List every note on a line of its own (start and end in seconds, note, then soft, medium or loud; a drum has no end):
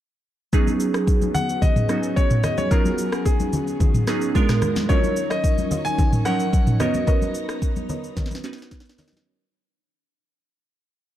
0.53 1.40 F#3 medium
0.53 4.31 F#3 medium
0.53 4.31 B3 medium
0.53 1.41 B3 medium
0.53 4.31 C#4 medium
0.53 1.41 C#4 medium
0.53 1.41 D#4 medium
0.53 4.31 G#4 medium
0.53 1.41 G#4 medium
0.53 kick loud
0.53 shaker medium
0.67 high conga medium
0.67 shaker medium
0.80 shaker medium
0.94 cross-stick loud
0.94 shaker medium
1.07 kick medium
1.07 shaker medium
1.22 high conga medium
1.22 shaker medium
1.34 1.63 F#5 loud
1.34 low conga medium
1.34 shaker medium
1.49 shaker soft
1.62 2.18 D#5 loud
1.62 kick loud
1.62 low conga medium
1.62 shaker medium
1.76 mid tom medium
1.76 high conga medium
1.76 shaker medium
1.89 2.55 F#3 medium
1.89 2.55 B3 medium
1.89 2.56 C#4 medium
1.89 2.56 D#4 medium
1.89 2.56 F#4 medium
1.89 cross-stick medium
1.89 shaker medium
2.03 shaker medium
2.16 2.45 C#5 medium
2.16 kick medium
2.16 shaker medium
2.31 mid tom medium
2.31 shaker medium
2.44 2.58 D#5 medium
2.44 cross-stick loud
2.44 low conga medium
2.44 shaker loud
2.58 2.71 C#5 medium
2.58 high conga medium
2.58 shaker medium
2.71 3.59 F#3 medium
2.71 3.59 B3 medium
2.71 3.59 C#4 medium
2.71 3.59 D#4 medium
2.71 3.59 F4 medium
2.71 3.22 A#4 medium
2.71 kick loud
2.71 shaker medium
2.85 high conga medium
2.85 shaker medium
2.98 shaker medium
3.12 cross-stick loud
3.12 shaker medium
3.25 4.58 G#4 medium
3.25 kick medium
3.25 shaker medium
3.40 high conga medium
3.40 shaker medium
3.53 low conga medium
3.53 shaker medium
3.67 shaker soft
3.80 kick loud
3.80 low conga medium
3.80 shaker medium
3.94 mid tom medium
3.94 high conga medium
3.94 shaker medium
4.07 4.35 F#3 medium
4.07 4.34 B3 medium
4.07 4.35 C#4 medium
4.07 4.35 D#4 medium
4.07 4.35 G#4 medium
4.07 cross-stick medium
4.07 snare medium
4.07 shaker medium
4.21 shaker medium
4.35 4.79 G#3 loud
4.35 4.89 G#3 medium
4.35 4.79 B3 medium
4.35 4.89 B3 medium
4.35 4.89 D4 medium
4.35 4.79 D4 medium
4.35 4.79 F4 medium
4.35 4.89 A#4 medium
4.35 4.79 A#4 loud
4.35 kick medium
4.35 shaker medium
4.49 cross-stick loud
4.49 snare medium
4.49 mid tom medium
4.49 shaker medium
4.62 cross-stick loud
4.62 low conga medium
4.62 shaker medium
4.76 snare medium
4.76 high conga medium
4.76 shaker medium
4.89 6.78 D#3 medium
4.89 4.96 F3 medium
4.89 6.78 C#4 medium
4.89 5.77 C#4 medium
4.89 6.78 D#4 medium
4.89 5.77 D#4 medium
4.89 5.40 F4 medium
4.89 5.77 F4 medium
4.89 5.40 F#4 medium
4.89 5.77 A#4 medium
4.89 5.32 C#5 medium
4.89 5.40 C#5 medium
4.89 5.40 D#5 loud
4.89 kick loud
4.89 shaker medium
4.96 5.80 F#3 medium
5.04 high conga medium
5.04 shaker medium
5.16 shaker medium
5.30 5.87 D#5 loud
5.30 cross-stick loud
5.30 shaker medium
5.44 kick medium
5.44 shaker medium
5.58 high conga medium
5.58 shaker medium
5.71 5.82 F4 medium
5.71 5.82 F#4 medium
5.71 5.82 C#5 medium
5.71 5.82 D#5 medium
5.71 low conga medium
5.71 shaker medium
5.85 6.23 G#5 loud
5.85 shaker medium
5.99 kick loud
5.99 low conga medium
5.99 shaker medium
6.13 mid tom medium
6.13 high conga medium
6.13 shaker medium
6.25 6.81 F3 medium
6.25 6.80 F#3 medium
6.25 6.79 C#4 medium
6.25 6.80 D#4 medium
6.25 6.80 A#4 medium
6.25 6.76 F#5 loud
6.25 cross-stick medium
6.25 shaker medium
6.40 shaker medium
6.53 kick loud
6.53 shaker medium
6.67 mid tom medium
6.67 shaker medium
6.80 7.68 B3 medium
6.80 9.23 B3 medium
6.80 7.68 C#4 medium
6.80 9.23 D#4 medium
6.80 7.68 D#4 medium
6.80 7.68 F#4 medium
6.80 7.05 A#4 medium
6.80 7.68 A#4 medium
6.80 7.05 B4 medium
6.80 7.06 C#5 medium
6.80 7.05 D#5 medium
6.80 7.06 D#5 medium
6.80 9.23 A#5 medium
6.80 cross-stick loud
6.80 low conga medium
6.80 shaker loud
6.94 high conga medium
6.94 shaker medium
7.07 7.58 A#4 loud
7.07 7.58 B4 medium
7.07 7.58 C#5 medium
7.07 8.67 D#5 medium
7.07 7.58 D#5 loud
7.07 kick loud
7.07 shaker medium
7.22 high conga medium
7.22 shaker medium
7.35 shaker medium
7.49 cross-stick loud
7.49 shaker medium
7.62 kick medium
7.62 shaker medium
7.76 high conga medium
7.76 shaker medium
7.89 8.00 A#4 medium
7.89 8.00 B4 medium
7.89 8.00 C#5 medium
7.89 8.00 D#5 medium
7.89 low conga medium
7.89 shaker medium
8.04 shaker soft
8.17 kick loud
8.17 snare medium
8.17 low conga medium
8.17 shaker medium
8.26 snare medium
8.31 high conga medium
8.31 shaker medium
8.35 snare medium
8.44 9.10 B3 medium
8.44 9.10 C#4 medium
8.44 9.10 D#4 medium
8.44 9.10 F#4 medium
8.44 9.10 B4 loud
8.44 snare medium
8.44 shaker medium
8.53 snare medium
8.58 shaker medium
8.62 snare medium
8.71 kick loud
8.71 snare medium
8.71 shaker medium
8.80 snare medium
8.85 shaker medium
8.89 snare loud
8.98 9.24 A#4 medium
8.98 9.24 B4 medium
8.98 9.24 C#5 medium
8.98 9.24 D#5 medium
8.98 snare medium
8.98 open hi-hat medium
8.98 low conga medium
8.98 shaker medium
9.08 snare loud
9.12 high conga medium
9.12 shaker medium
9.17 snare medium